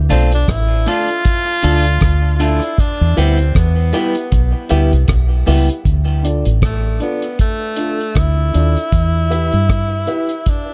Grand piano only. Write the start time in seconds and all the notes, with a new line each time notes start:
0.09 D4 F4 A4 D5
0.86 D4 F4 A4 D5
1.62 D4 F4 A4 D5
2.39 D4 F4 A4 D5
2.62 A4 D5
3.16 E4 G4 B4 E5
3.93 E4 G4 B4 E5
4.69 E4 G4 B4 E5
5.46 E4 G4 B4 E5
6.23 D4 F4 A4 D5
7.00 D4 F4 A4 D5
7.76 D4 F4 A4 D5
7.99 A4 D5
8.53 D4 F4 A4 D5
9.30 E4 G4 B4 E5
10.07 E4 G4 B4 E5